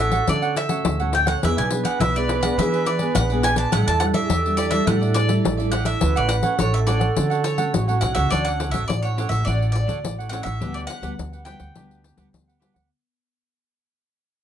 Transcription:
Already playing: A1 A2 F#4 A4
0.00 D4 A4 C#5 E5 F#5
0.12 A3 C#4 F#4 A4 C#5 F#5, pandeiro
0.28 D3 A3 C#4 D4 F#4 A4 C#5 D5 F#5, pandeiro
0.42 A4 C#5 F#5, pandeiro
0.56 E5, muted cavaquinho stroke, pandeiro
0.69 A3 C#4 F#4 A4 C#5 F#5, pandeiro
0.85 D2 A2, pandeiro
1.00 A3 C#4 F#4 A4 C#5 F#5, pandeiro
1.12 D4 A4 C#5 F#5 G5, pandeiro
1.26 A4 C#5 F#5, pandeiro
1.37 C#5
1.42 E2 E3 B3 D4 E4 G#4 B4 D5 E5, pandeiro
1.57 B1 G#4 B4 D5 G#5, pandeiro
1.70 B3 D4 G#4, muted cavaquinho stroke, pandeiro
1.83 G#4 B4 D5 F#5, pandeiro
1.99 B1 B2 E4 G#4 B4 D5 E5, pandeiro
2.16 B3 D4 G#4 D5, pandeiro
2.27 E4 G#4 B4 D5, pandeiro
2.41 B3 D4 G#4 B4 D5 F#5, pandeiro
2.58 E3 B3 D4 E4 G#4 B4 D5 E5, pandeiro
2.72 G#4 B4 D5, pandeiro
2.85 D5, muted cavaquinho stroke, pandeiro
2.99 B3 D4 G#4 B4 D5, pandeiro
3.15 A#1 F#5, pandeiro
3.30 B3 D4 G#4 B4 D5, pandeiro
3.43 E4 G#4 B4 D5 G#5, pandeiro
3.56 G#4 B4 D5 A5, pandeiro
3.71 A1 A2 G3 D4 E4 G4 A4 D5 E5 F#5, pandeiro
3.87 E2 A4 D5 E5 A5, pandeiro
4.00 G3 D4 E4 F#5, muted cavaquinho stroke, pandeiro
4.13 A4 D5 E5, pandeiro
4.24 G#4
4.29 E2 E3 G4 A4 D5 E5, pandeiro
4.46 G3 D4 E4, pandeiro
4.57 G4 A4 D5 E5, pandeiro
4.70 G3 D4 E4 A4 D5 E5, pandeiro
4.86 A2 G3 D4 E4 G4 A4 D5 E5 F#5, pandeiro
5.01 A4 D5 E5, pandeiro
5.14 D5, muted cavaquinho stroke, pandeiro
5.28 G3 D4 E4 A4 D5 E5, pandeiro
5.45 A1 E3, pandeiro
5.57 G3 D4 E4 A4 D5 E5, pandeiro
5.72 G4 A4 D5 E5 F#5, pandeiro
5.85 A4 D5 E5, pandeiro
6.01 D2 D3 A3 C#4 D4 F#4 A4 B4 C#5 F#5, pandeiro
6.16 A1 A4 C#5 D5 F#5, pandeiro
6.29 F#5, muted cavaquinho stroke, pandeiro
6.43 A3 C#4 F#4 A4 C#5 F#5, pandeiro
6.58 A1 A2 D4 A4 C#5 F#5, pandeiro
6.74 E5, pandeiro
6.86 A3 C#4 D4 F#4 A4 C#5 D5 F#5, pandeiro
6.99 A4 C#5 F#5, pandeiro
7.15 D3 A3 C#4 D4 F#4 A4 C#5 F#5, pandeiro
7.30 A4 C#5 F#5, pandeiro
7.44 C#5, muted cavaquinho stroke, pandeiro
7.58 A3 C#4 F#4 A4 C#5 F#5, pandeiro
7.74 A1 A2 F#4, pandeiro
7.88 A3 C#4 F#4 A4 C#5 F#5, pandeiro
8.01 B1 D4 A4 C#5 F#5, pandeiro
8.15 C#2 A3 C#4 F#4 A4 C#5 E5 F#5, pandeiro
8.30 D2 D3 D4 A4 C#5 D5 F#5, pandeiro
8.45 F#5, pandeiro
8.60 D4 A4 C#5 F#5, pandeiro
8.71 A1 A3 C#4 D4 F#4 A4 C#5 E5 F#5, pandeiro
8.88 A1 A2 D5, pandeiro
9.03 A4 C#5 F#5, pandeiro
9.16 A3 C#4 D4 F#4 A4 C#5 F#5, pandeiro
9.29 A1 A4 C#5 E5 F#5, pandeiro
9.45 A1 D3 A3 C#4 D4 F#4 A4 C#5 D5 F#5, pandeiro
9.62 pandeiro
9.72 D5, pandeiro
9.87 D2 A3 D4 F#4 A4 C#5 F#5, pandeiro
10.04 A1 A2, pandeiro
10.18 A4 C#5 F#5, pandeiro
10.29 A3 C#4 D4 F#4 A4 C#5 F#5, pandeiro
10.43 A1 A4 C#5 E5 F#5, pandeiro
10.60 D2 D3 G3 B3 D4 F#4 G4 B4 F#5, pandeiro
10.74 D5, pandeiro
10.87 D4 G4 B4 F#5, pandeiro
11.02 D2 G3 B3 D4 F#4 G4 B4 F#5, pandeiro
11.18 D2 D3, pandeiro
11.33 G4 B4 F#5, pandeiro
11.45 G3 B3 D4 F#4 G4 B4 F#5 G5, pandeiro
11.59 D2 G4 B4 F#5, pandeiro
11.75 D2 D3 G3 B3 D4 F#4 G4 B4, pandeiro
11.91 pandeiro
12.04 pandeiro
12.17 D2 G3 B3 D4 G4 B4 F#5, pandeiro
12.33 D2 D3, pandeiro
12.48 G4 B4 F#5, pandeiro
12.60 G3 B3 D4 F#4 G4 B4 F#5, pandeiro
12.74 D2 G4 B4 F#5, pandeiro

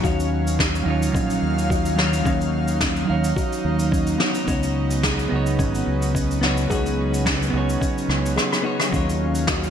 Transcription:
Already playing: C#4
0.00 D#2 D#3 F#3 D#4 F#4 F5, kick
0.04 C#5 F5, cabasa
0.20 cabasa
0.47 cabasa
0.59 C#4, kick, snare, cabasa
0.75 cabasa
0.83 D#2 F#3 D#4
0.88 F4 C#5
1.03 cabasa
1.15 A#1 C#4, kick, cabasa
1.30 cabasa
1.42 D#2
1.59 cabasa
1.70 F#4, kick, cabasa
1.85 cabasa
1.96 F#3 D#4 F4 C#5, snare
2.13 cabasa
2.22 D#2 F#3 D#4, kick
2.26 C#4 C#5 F5, cabasa
2.41 cabasa
2.68 cabasa
2.81 C#4, kick, snare, cabasa
2.96 cabasa
3.05 F#3 D#4
3.10 D#2 C#5 F5
3.24 cabasa
3.36 F#4, kick, cabasa
3.53 cabasa
3.65 D#2
3.79 cabasa
3.92 C#4, kick, cabasa
4.07 cabasa
4.18 C#3 B3 D#4 F#4 C#5, snare
4.35 cabasa
4.44 C#2 B3 C#4 D#4, kick, cabasa
4.49 F#4 C#5
4.63 cabasa
4.91 cabasa
5.03 G#4, kick, snare, cabasa
5.19 cabasa
5.28 C#2 B3 D#4
5.33 F#4 C#5
5.46 cabasa
5.59 G#1 C#4, kick, cabasa
5.75 cabasa
5.87 C#2
6.02 cabasa
6.15 C#4, kick, cabasa
6.31 cabasa
6.41 B3 C#4 D#4 F#4 C#5, snare
6.57 cabasa
6.67 C#2 B3 D#4 G#4, kick, cabasa
6.72 F#4 C#5
6.86 cabasa
7.14 cabasa
7.26 C#4, kick, snare, cabasa
7.42 cabasa
7.50 C#2 B3 D#4
7.55 F#4 C#5
7.69 cabasa
7.81 C#4, kick, cabasa
7.98 cabasa
8.09 C#2, cross-stick
8.26 cabasa
8.36 G#4, cross-stick, cabasa
8.52 cross-stick, cabasa
8.62 B3 D#4 F#4 C#5
8.80 cross-stick, cabasa
8.89 D#2 D#3 F#3 C#4 D#4 F5, kick
8.94 F4 C#5, cabasa
9.09 cabasa
9.35 cabasa
9.47 F#4, kick, snare, cabasa
9.64 cabasa

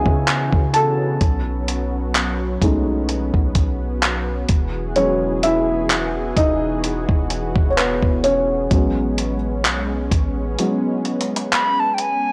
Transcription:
Already playing: C#3 E3 F#3 B3 C#4 D#4 E4 F#4 G#4 D#5 E5 G#5
0.06 C#3, kick
0.27 clap, closed hi-hat
0.53 C#3, kick
0.74 A4 A5, closed hi-hat
1.21 B1 F#3, kick, closed hi-hat
1.68 closed hi-hat
2.15 clap, closed hi-hat
2.62 B1 G#3 A3 C#4 D#4, kick, closed hi-hat
3.09 closed hi-hat
3.34 B1, kick
3.55 kick, closed hi-hat
4.02 clap, closed hi-hat
4.49 E1 E3 F#4 G#4, kick, closed hi-hat
4.96 F#3 G#3 C#4 F#4 C#5, closed hi-hat
5.43 E4 E5, closed hi-hat
5.90 clap, closed hi-hat
6.37 E1 D#4 D#5, kick, closed hi-hat
6.84 closed hi-hat
7.09 E1, kick
7.30 closed hi-hat
7.56 E1, kick
7.70 C#5
7.77 B3 B4, clap, closed hi-hat
8.03 E1, kick
8.24 C#4 C#5, closed hi-hat
8.71 A1 F#3 G#3 B3 C#4, kick, closed hi-hat
9.18 closed hi-hat
9.65 B1, clap, closed hi-hat
10.11 A1, kick, closed hi-hat
10.59 F#3 G#3 B3 C#4, closed hi-hat
11.05 closed hi-hat
11.21 closed hi-hat
11.36 closed hi-hat
11.52 B5, clap, closed hi-hat
11.80 A5
11.94 G5
11.98 G#5, closed hi-hat

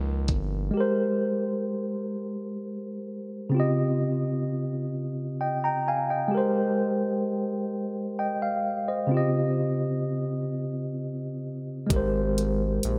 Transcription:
Already playing: C#2 A#4
0.28 G1, kick, closed hi-hat
0.71 G#3 G4
0.77 A#4 C5
3.50 C#3 C4
3.55 F4 G4
3.60 D#5
5.41 D#5 G5
5.64 G5 A#5
5.88 F5 G#5
6.10 D#5 G5
6.28 G#3 G4
6.35 A#4 C5
8.19 D#5 G5
8.42 F5
8.88 C5 D#5
9.07 C#3 C4
9.11 F4 G4
9.17 D#5
11.87 G#3 G4, kick
11.91 G#1 A#4, closed hi-hat
11.96 C5
12.38 closed hi-hat
12.83 A#1, closed hi-hat

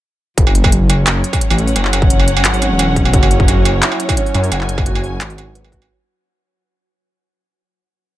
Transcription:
0.37 F#1 F#3, kick, closed hi-hat
0.47 struck metal
0.55 closed hi-hat
0.64 kick, struck metal
0.70 C#4, closed hi-hat
0.88 C#5, closed hi-hat, struck metal
1.07 F#1, clap, closed hi-hat, struck metal
1.24 closed hi-hat
1.33 kick, open hi-hat, struck metal
1.41 closed hi-hat
1.46 F#5
1.50 A1, open hi-hat, struck metal
1.58 closed hi-hat
1.67 open hi-hat
1.76 F#1, closed hi-hat, struck metal
1.85 clap
1.93 closed hi-hat, struck metal
2.02 kick
2.10 closed hi-hat
2.20 struck metal
2.28 closed hi-hat
2.37 struck metal
2.45 G#1, clap, closed hi-hat
2.54 open hi-hat
2.62 closed hi-hat, struck metal
2.71 E1
2.79 closed hi-hat, struck metal
2.96 kick, closed hi-hat
3.05 struck metal
3.14 F#1 F#4, kick, closed hi-hat
3.23 struck metal
3.31 closed hi-hat
3.40 kick
3.48 F#4, closed hi-hat, struck metal
3.65 closed hi-hat, struck metal
3.83 E4, clap, closed hi-hat
3.92 struck metal
4.00 closed hi-hat
4.09 kick, open hi-hat, struck metal
4.17 C#4 G#5, closed hi-hat
4.26 open hi-hat
4.34 F#2, closed hi-hat, struck metal
4.44 open hi-hat
4.52 F#1 F#5, closed hi-hat, struck metal
4.61 clap
4.69 closed hi-hat
4.78 kick, struck metal
4.86 F#4, closed hi-hat
4.95 struck metal
5.04 open hi-hat
5.21 G#1, clap, closed hi-hat, struck metal
5.30 open hi-hat
5.38 F#4, closed hi-hat, struck metal
5.55 B4, closed hi-hat
5.64 struck metal
5.72 F#4, kick, closed hi-hat
5.82 struck metal

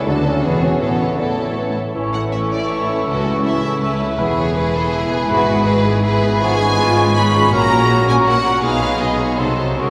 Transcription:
Already playing: A4
0.06 D2 D3 F#3 D4 F#4 A4 D5
0.24 F#3 C#4 F#4 A4 D5
0.43 E1 E2 E3 F#3 B3 F#4 G#4 C#5
0.61 F#3 C#4 F#4 G#4 C#5
0.80 A1 A2 E3 B3 E4 A4 C#5
0.99 E3 C#4 A4 C#5
1.18 E3 A3 E4 A4 C#5 D5
1.37 E3 A4 C#5
1.56 E3 B4 C#5
1.75 E3 A4 C#5
1.94 A1 A2 E3 C#4 E4 A4 C#6
2.13 E3 A3 C#4 F#5
2.32 C#4 E4 E5
2.51 A3 C#4 C#5 D5
2.70 C#4 E4 C#5 E5
2.88 A3 C#4 C#5
3.07 C#2 C#3 E3 C#4 E4 F#4 A4
3.25 A3 C#4
3.44 C#4 E4 E5
3.63 A3 C#4 C#5
3.82 C#4 E4 B4 E5
4.00 A3 C#4 C#5
4.18 E1 E2 E3 G#3 B3 E4 G#4 B4 B5
4.37 B3 G#4 C#5
4.56 G#3 E4 G#4 B4
4.74 B3 G#4 A4 E5
4.92 G#3 E4 G#4 B5
5.10 B3 G#4 E5
5.28 G#1 G#2 E3 G#3 B3 E4 F#4 B4
5.47 G#3 B3 G#4
5.65 G#3 E4 G#4 B4
5.84 B3 G#4 B4
6.02 G#3 E4 G#4 B4 E5
6.22 B3 G#4 B4
6.40 G#2 F3 G#3 B3 F4 G#4 B4 G#5 C#6
6.59 G#3 C#4 G#4
6.77 B3 F4
6.96 C#4 G#4 C#5
7.15 B3 D#4 F4 F5 B5
7.33 C#4 G#4 C#5
7.52 A#1 A#2 F#3 A#3 C#4 F#4 A#4 A#5
7.70 A#3 C#4 A#4
7.89 A#3 F#4
8.08 C#4 A#4 C#5 G#5
8.25 A#3 F#4 F#5
8.44 C#4 A#4 C#5
8.62 B1 B2 G#3 B3 D#4 G#4 F5 B5
8.81 B3 D#4 B4
9.00 G#3 B3 D#4 G#4 D#5 B5
9.19 D#4 B4 C#5 D#5
9.37 C2 C3 F#3 C4 D#4 F#4 A4 C5 C6
9.58 D#4 F#4 A4
9.76 C#2 C#3 F#3 G#3 C#4 F#4 G#4 A#4 C#6

